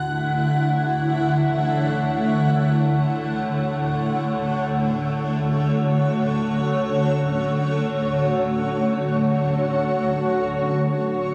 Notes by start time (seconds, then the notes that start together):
Already playing: D3 A3 E4 F#5
0.00 C#5
4.70 F#4
10.19 D4